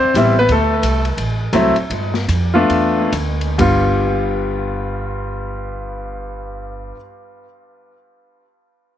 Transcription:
0.00 0.14 C4 medium
0.00 0.13 C5 medium
0.00 muted upright bass stroke soft
0.14 0.48 A1 medium
0.14 0.35 G3 medium
0.14 0.35 B3 medium
0.14 0.35 C4 medium
0.14 0.35 E4 medium
0.14 kick soft
0.14 hi-hat pedal medium
0.14 ride medium
0.39 0.50 B3 medium
0.39 0.51 B4 medium
0.49 0.82 D2 medium
0.49 1.02 A4 medium
0.49 ride medium
0.53 1.03 A3 medium
0.83 1.16 C2 medium
0.83 kick soft
0.83 hi-hat pedal soft
0.83 ride medium
1.05 ride soft
1.17 1.52 A1 medium
1.17 kick soft
1.17 ride medium
1.53 1.74 C2 medium
1.53 1.74 F#3 medium
1.53 1.74 A3 medium
1.53 1.74 C4 medium
1.53 1.74 E4 medium
1.53 kick soft
1.53 hi-hat pedal medium
1.53 ride medium
1.76 muted upright bass stroke soft
1.76 ride soft
1.90 2.27 G2 medium
1.90 kick soft
1.90 ride medium
2.14 snare medium
2.28 2.68 F2 medium
2.28 kick soft
2.28 hi-hat pedal medium
2.28 ride medium
2.54 3.10 A3 medium
2.54 3.10 B3 medium
2.54 3.10 D4 medium
2.54 3.09 F4 medium
2.69 3.11 E2 medium
2.69 kick soft
2.69 ride medium
3.12 3.58 D2 medium
3.12 kick soft
3.12 hi-hat pedal medium
3.12 ride medium
3.41 ride soft
3.58 6.90 G1 medium
3.58 6.94 G2 medium
3.58 6.95 G3 medium
3.58 6.96 B3 medium
3.58 6.96 F4 medium
3.58 kick medium
3.58 ride bell medium

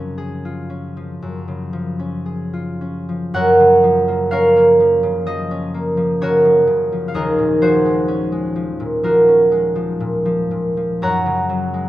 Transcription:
0.00 1.21 F#2 medium
0.00 1.47 C#3 soft
0.00 0.95 F3 soft
0.00 0.69 C#4 soft
0.00 2.99 A#4 medium
0.18 2.24 G#4 soft
0.45 2.52 F4 soft
0.70 1.98 C#4 soft
0.97 1.72 F3 soft
1.22 3.33 F#2 soft
1.48 3.37 C#3 soft
1.73 3.07 F3 soft
1.99 2.80 C#4 soft
2.26 3.38 G#4 soft
2.53 6.43 F4 soft
2.81 4.30 C#4 soft
3.09 3.82 F3 soft
3.34 7.18 F#2 medium
3.34 4.32 A#4 medium
3.34 4.32 C#5 medium
3.34 7.24 F#5 loud
3.60 5.02 C#3 soft
3.83 4.79 F3 medium
4.08 4.55 A#3 medium
4.31 5.50 C#4 medium
4.31 6.22 A#4 medium
4.31 6.21 C#5 medium
4.31 7.07 F5 medium
4.56 5.73 A#3 medium
4.80 5.26 F3 medium
5.03 6.20 C#3 medium
5.27 5.96 F3 medium
5.27 6.86 D#5 medium
5.51 8.07 C#4 medium
5.74 9.64 A#3 medium
5.97 6.44 F3 medium
6.21 6.66 C#3 medium
6.21 7.61 F#4 medium
6.21 7.15 A#4 medium
6.21 10.12 C#5 medium
6.45 6.91 F3 medium
6.67 7.18 C#3 medium
6.92 7.60 F3 soft
7.08 7.20 F5 medium
7.14 11.04 D#2 medium
7.14 7.61 G#4 medium
7.14 9.03 A#4 medium
7.14 11.05 D#5 medium
7.38 8.79 A#2 medium
7.61 8.54 F3 medium
7.61 9.04 F#4 medium
7.61 11.53 G#4 medium
7.61 10.06 C5 medium
7.85 8.31 G#3 medium
8.08 9.27 C#4 medium
8.32 9.50 G#3 medium
8.56 9.02 F3 soft
8.80 9.99 A#2 medium
9.03 9.74 F3 medium
9.03 11.07 F4 soft
9.03 11.89 F#4 medium
9.03 11.89 A#4 medium
9.28 11.89 C#4 medium
9.51 11.73 G#3 medium
9.76 10.24 F3 medium
10.00 10.50 A#2 medium
10.25 10.76 F3 medium
10.51 11.06 A#2 soft
10.77 11.06 F3 soft
11.02 11.89 F#2 medium
11.02 11.89 C#5 medium
11.02 11.89 F#5 medium
11.02 11.89 A#5 loud
11.26 11.89 C#3 medium
11.50 11.89 F#3 medium
11.74 11.89 G#3 medium

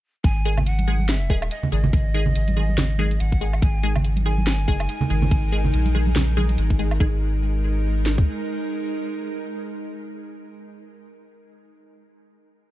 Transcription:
0.24 1.50 G#1 loud
0.24 0.66 G#5 loud
0.24 kick loud
0.24 closed hi-hat medium
0.45 0.56 D#3 medium
0.45 0.56 G#3 medium
0.45 0.56 G#4 loud
0.45 closed hi-hat medium
0.58 low conga medium
0.58 low woodblock medium
0.67 1.10 F#5 loud
0.67 closed hi-hat medium
0.79 closed hi-hat medium
0.79 high conga medium
0.88 0.98 D#3 medium
0.88 0.98 G#3 medium
0.88 0.98 G#4 loud
0.99 high conga medium
1.09 1.50 E5 loud
1.09 snare loud
1.09 closed hi-hat medium
1.30 1.45 D#3 loud
1.30 1.45 G#3 medium
1.30 1.45 G#4 loud
1.30 kick medium
1.42 closed hi-hat medium
1.42 low woodblock medium
1.51 1.71 D#5 medium
1.51 closed hi-hat medium
1.63 low conga medium
1.72 2.34 G#1 loud
1.72 1.87 D#3 medium
1.72 1.87 G#3 medium
1.72 1.87 G#4 medium
1.72 3.22 D#5 loud
1.72 closed hi-hat medium
1.84 low conga loud
1.93 kick loud
1.93 closed hi-hat medium
2.14 2.25 D#3 loud
2.14 2.25 G#3 medium
2.14 2.25 G#4 loud
2.14 closed hi-hat medium
2.26 low conga medium
2.35 3.19 G#1 medium
2.35 closed hi-hat medium
2.48 closed hi-hat medium
2.48 high conga medium
2.57 2.67 D#3 medium
2.57 2.67 G#3 medium
2.57 2.67 G#4 medium
2.69 high conga medium
2.78 snare loud
2.78 closed hi-hat medium
2.78 low conga loud
2.98 3.14 D#3 loud
2.98 3.14 G#3 medium
2.98 3.14 G#4 loud
2.98 high conga medium
3.11 closed hi-hat medium
3.20 3.61 G#1 loud
3.20 3.64 F#5 medium
3.20 closed hi-hat medium
3.32 kick medium
3.41 3.56 D#3 medium
3.41 3.56 G#3 medium
3.41 3.56 G#4 medium
3.41 closed hi-hat medium
3.53 low woodblock medium
3.62 4.50 G#1 medium
3.62 6.97 G#3 medium
3.62 6.97 D#4 medium
3.62 6.97 A#4 medium
3.62 4.00 G#5 loud
3.62 kick loud
3.62 closed hi-hat medium
3.83 3.94 D#3 medium
3.83 3.94 G#3 medium
3.83 3.94 G#4 loud
3.83 closed hi-hat medium
3.96 low conga medium
3.96 low woodblock medium
4.04 closed hi-hat medium
4.17 closed hi-hat medium
4.17 high conga medium
4.26 4.36 D#3 medium
4.26 4.36 G#3 medium
4.26 4.36 G#4 loud
4.26 6.54 G#5 loud
4.38 high conga medium
4.47 4.75 G1 medium
4.47 snare loud
4.47 closed hi-hat medium
4.68 4.83 D#3 loud
4.68 4.83 G#3 medium
4.68 4.83 G#4 loud
4.68 kick medium
4.75 4.88 F#1 medium
4.80 closed hi-hat medium
4.80 low woodblock medium
4.89 closed hi-hat medium
5.01 low conga medium
5.10 5.72 G#1 medium
5.10 5.25 D#3 medium
5.10 5.25 G#3 medium
5.10 5.25 G#4 medium
5.10 closed hi-hat medium
5.22 low conga loud
5.31 kick loud
5.31 closed hi-hat medium
5.52 5.63 D#3 medium
5.52 5.63 G#3 medium
5.52 5.63 G#4 loud
5.52 closed hi-hat medium
5.64 low conga medium
5.74 6.57 A#1 loud
5.74 closed hi-hat medium
5.86 closed hi-hat medium
5.86 high conga medium
5.95 6.05 D#3 medium
5.95 6.05 G#3 medium
5.95 6.05 G#4 medium
6.07 high conga medium
6.16 snare loud
6.16 closed hi-hat medium
6.16 low conga medium
6.37 6.52 D#3 loud
6.37 6.52 G#3 loud
6.37 6.52 G#4 loud
6.37 high conga medium
6.49 closed hi-hat medium
6.58 6.99 G#1 loud
6.58 closed hi-hat medium
6.70 kick medium
6.79 6.94 D#3 medium
6.79 6.94 G#3 medium
6.79 6.94 G#4 medium
6.79 closed hi-hat medium
6.91 low woodblock medium
7.00 8.23 G#1 loud
7.00 11.33 D#3 medium
7.00 11.14 G#3 medium
7.00 11.33 G#3 medium
7.00 11.14 D#4 medium
7.00 11.33 G#4 loud
7.00 11.14 A#4 loud
7.00 kick loud
8.06 snare medium
8.18 kick medium

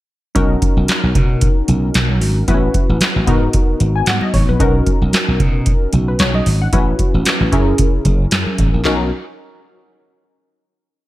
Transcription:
0.35 0.56 B1 loud
0.35 2.44 C#4 medium
0.35 2.44 D#4 medium
0.35 2.44 F#4 medium
0.35 2.44 A#4 medium
0.35 kick loud
0.35 closed hi-hat medium
0.35 muted conga medium
0.62 kick loud
0.62 closed hi-hat medium
0.62 muted conga medium
0.77 0.86 B1 medium
0.88 snare loud
0.88 clap loud
0.88 closed hi-hat loud
0.88 high conga medium
1.04 1.12 B1 medium
1.15 1.47 B2 medium
1.15 kick medium
1.15 closed hi-hat medium
1.15 low conga medium
1.41 kick loud
1.41 closed hi-hat loud
1.68 1.88 B1 medium
1.68 closed hi-hat medium
1.68 muted conga soft
1.68 low conga medium
1.94 2.22 B1 medium
1.94 snare loud
1.94 clap medium
1.94 closed hi-hat medium
1.94 high conga medium
2.09 high conga medium
2.21 2.42 G#1 medium
2.21 open hi-hat medium
2.48 2.68 A1 loud
2.48 2.55 B3 medium
2.48 3.28 E4 medium
2.48 3.27 F#4 medium
2.48 3.28 B4 medium
2.48 kick loud
2.48 closed hi-hat medium
2.48 muted conga medium
2.54 3.31 C#4 medium
2.74 kick medium
2.74 closed hi-hat medium
2.74 muted conga medium
2.89 2.98 A1 loud
3.01 snare loud
3.01 clap medium
3.01 closed hi-hat loud
3.01 high conga medium
3.16 3.25 A1 loud
3.27 3.48 G#2 medium
3.27 4.57 B3 medium
3.27 4.58 D#4 medium
3.27 4.58 F#4 medium
3.27 3.80 A#4 medium
3.27 kick medium
3.27 closed hi-hat medium
3.27 low conga medium
3.53 kick loud
3.53 closed hi-hat loud
3.53 low conga medium
3.80 4.01 G#1 medium
3.80 closed hi-hat medium
3.96 4.07 G#5 medium
4.06 4.18 G#2 loud
4.06 4.21 F#5 medium
4.06 snare loud
4.06 clap medium
4.06 closed hi-hat medium
4.06 high conga medium
4.21 4.33 D#5 medium
4.21 high conga medium
4.34 4.45 G#1 medium
4.34 4.48 C#5 medium
4.34 kick medium
4.34 open hi-hat medium
4.48 4.57 A#1 medium
4.48 4.74 B4 medium
4.60 4.80 B1 medium
4.60 6.68 C#4 medium
4.60 6.69 D#4 medium
4.60 6.69 F#4 medium
4.60 5.91 A#4 medium
4.60 kick loud
4.60 closed hi-hat medium
4.60 muted conga medium
4.87 kick medium
4.87 closed hi-hat medium
4.87 muted conga medium
5.02 5.11 B1 loud
5.13 snare loud
5.13 clap medium
5.13 closed hi-hat loud
5.13 high conga medium
5.28 5.37 B1 loud
5.40 5.71 B2 loud
5.40 kick medium
5.40 closed hi-hat medium
5.40 low conga medium
5.66 kick loud
5.66 closed hi-hat loud
5.93 6.13 B1 medium
5.93 closed hi-hat medium
5.93 muted conga soft
5.93 low conga medium
6.08 6.19 B4 medium
6.19 6.40 B1 loud
6.19 6.34 C#5 medium
6.19 snare loud
6.19 clap medium
6.19 closed hi-hat medium
6.19 high conga medium
6.34 6.60 D#5 medium
6.34 high conga medium
6.46 6.66 G#1 medium
6.46 open hi-hat medium
6.62 6.86 F#5 medium
6.73 6.93 A1 loud
6.73 7.51 C#4 medium
6.73 7.51 E4 medium
6.73 7.53 F#4 medium
6.73 7.53 B4 medium
6.73 kick loud
6.73 closed hi-hat medium
6.73 muted conga medium
6.99 kick medium
6.99 closed hi-hat medium
6.99 muted conga medium
7.14 7.23 A1 medium
7.25 snare loud
7.25 clap medium
7.25 closed hi-hat loud
7.25 high conga medium
7.40 7.49 A1 medium
7.52 7.72 F#2 medium
7.52 8.82 C#4 medium
7.52 8.82 E4 medium
7.52 8.83 G#4 medium
7.52 8.83 A#4 medium
7.52 kick medium
7.52 closed hi-hat medium
7.52 low conga medium
7.78 kick loud
7.78 closed hi-hat loud
7.78 low conga medium
8.05 8.25 F#1 medium
8.05 kick medium
8.05 closed hi-hat medium
8.05 muted conga soft
8.31 8.43 F#2 loud
8.31 snare loud
8.31 clap medium
8.31 closed hi-hat medium
8.31 high conga medium
8.47 high conga medium
8.58 8.70 G#1 medium
8.58 kick medium
8.58 closed hi-hat medium
8.73 8.82 A#1 medium
8.85 9.10 B1 medium
8.85 9.10 C#4 medium
8.85 9.10 D#4 medium
8.85 9.10 F#4 medium
8.85 9.10 A#4 medium
8.85 snare medium
8.85 clap medium
8.85 muted conga medium

